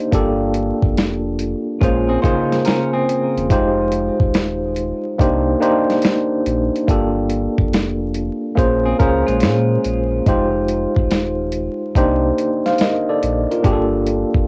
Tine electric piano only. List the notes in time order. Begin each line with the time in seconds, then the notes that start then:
Already playing: A#3 D4 D#4 G4 A#4 C5 D#5
0.12 A#3 D4 F4 G4 A4
1.80 A#3 C#4 F4 G#4 C5
2.23 C#3 A#3 F4 G#4 C5
3.50 G#3 D#4 F4 G4 C5
5.18 A#3 D4 D#4 G4 C5
5.60 A#3 D4 D#4 G4 C5
6.87 A#3 D4 F4 G4 A4
8.55 A#3 C#4 F4 G#4 C5
8.99 A#3 C#4 F4 G#4 C5
10.26 G#3 D#4 F4 G4 C5
11.95 A#3 D4 D#4 G4 C5
12.66 C5 F5
12.81 A#4 D#5
13.09 A4 D5
13.51 F4 A#4
13.63 A#3 D4 F4 G4 G#4
13.73 A4